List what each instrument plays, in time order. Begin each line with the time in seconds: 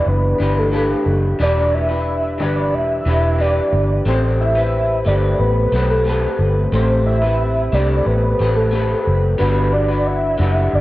Already playing: clean electric guitar E3 B3 D4 G4 B4
0.06 fingered electric bass F#1, soft synth lead B4
0.38 fingered electric bass G1, clean electric guitar E3 D4 G4 B4
0.59 soft synth lead A4
0.72 clean electric guitar E3 D4 G4 B4
1.06 fingered electric bass F#1
1.39 fingered electric bass E1, clean electric guitar E3 D4 G4 B4, soft synth lead D5
1.74 soft synth lead E5
1.89 clean electric guitar D4 G4 B4
2.38 fingered electric bass G1, clean electric guitar E3 D4 G4 B4, soft synth lead D5
2.73 fingered electric bass E1, soft synth lead E5
3.05 fingered electric bass E1, clean electric guitar E3 D4 G4 B4
3.38 clean electric guitar E3 D4 G4 B4, soft synth lead D5
3.72 fingered electric bass G1
4.05 fingered electric bass A1, clean electric guitar A3 C4 G4, soft synth lead C5
4.40 soft synth lead E5
4.55 clean electric guitar C4 G4 B4
5.05 fingered electric bass G1, clean electric guitar A3 C4 G4 B4, soft synth lead D5
5.39 fingered electric bass A1, soft synth lead B4
5.72 fingered electric bass B1, clean electric guitar A3 C4 G4 B4
5.90 soft synth lead A4
6.05 clean electric guitar A3 C4 G4 B4
6.39 fingered electric bass G1
6.72 fingered electric bass A1, clean electric guitar A3 C4 G4, soft synth lead C5
7.07 soft synth lead E5
7.22 clean electric guitar G4 B4
7.26 clean electric guitar C4
7.72 fingered electric bass C2, clean electric guitar A3 C4 G4 B4, soft synth lead D5
8.06 fingered electric bass A1, soft synth lead B4
8.39 fingered electric bass A1, clean electric guitar A3 C4 G4 B4
8.56 soft synth lead A4
8.71 clean electric guitar A3 C4 G4
8.75 clean electric guitar B4
9.07 fingered electric bass F#1
9.38 fingered electric bass G1, clean electric guitar G3 D4 F#4 B4, soft synth lead B4
9.72 soft synth lead D5
9.88 clean electric guitar D4 F#4 B4
10.07 soft synth lead E5
10.38 fingered electric bass F#1, clean electric guitar G3 D4 F#4 B4
10.73 fingered electric bass G1, soft synth lead D5